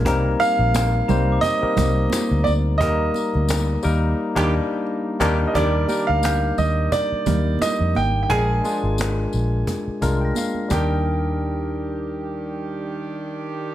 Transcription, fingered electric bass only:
X:1
M:4/4
L:1/16
Q:"Swing 16ths" 1/4=87
K:Eb
V:1 name="Fingered electric bass" clef=bass
C,,2 z B,,,3 C,,2 z2 C,,2 z D,, D,,2 | E,,2 z D,,3 E,,2 z E,,2 z3 E,,2 | E,,2 z D,,3 E,,2 z2 E,,2 z F,, A,,,2 | B,,,2 z A,,,3 B,,,2 z2 C,,2 z2 E,,2- |
E,,16 |]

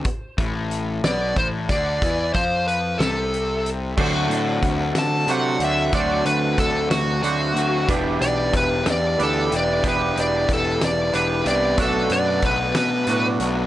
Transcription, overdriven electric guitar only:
X:1
M:6/8
L:1/8
Q:3/8=61
K:Dmix
V:1 name="Overdriven electric guitar"
z A,,2 B,, A,, D, | E, =F,2 C,3 | [A,CF]4- [A,CF] [A,CF] | [A,CF]4- [A,CF] [A,CF] |
[E,B,EG]4- [E,B,EG] [E,B,EG] | [E,B,EG]4- [E,B,EG] [E,B,EG] | [F,B,DF]4- [F,B,DF] [F,B,DF] |]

